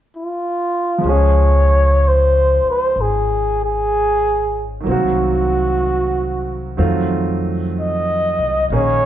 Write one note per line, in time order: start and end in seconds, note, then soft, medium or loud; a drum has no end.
0.16 1.12 F4 medium
0.98 4.84 F3 soft
0.98 4.85 G#3 soft
1.04 2.60 C#2 medium
1.04 4.88 C#4 soft
1.09 4.89 G#4 soft
1.09 2.10 C#5 medium
2.08 2.68 C5 medium
2.64 muted upright bass stroke soft
2.71 3.03 C5 medium
2.96 4.83 G#1 medium
3.01 3.62 G#4 medium
3.64 4.67 G#4 medium
4.81 6.75 D#3 soft
4.81 6.76 F#3 soft
4.86 6.74 C2 medium
4.86 6.78 A#3 soft
4.86 6.77 C4 soft
4.86 4.93 F4 soft
4.91 6.81 F#4 soft
4.91 6.81 F#4 medium
6.77 8.34 F2 medium
6.77 8.69 D#3 soft
6.77 8.70 F#3 soft
6.77 8.70 A3 soft
6.77 8.70 C4 soft
6.77 8.70 F4 medium
7.80 8.69 D#5 medium
8.39 8.68 C2 medium
8.70 9.05 A#1 medium
8.70 9.05 D#3 soft
8.70 9.05 A#3 soft
8.70 9.05 C#4 soft
8.70 9.05 D#4 soft
8.70 9.05 G#4 soft
8.75 9.05 C#5 medium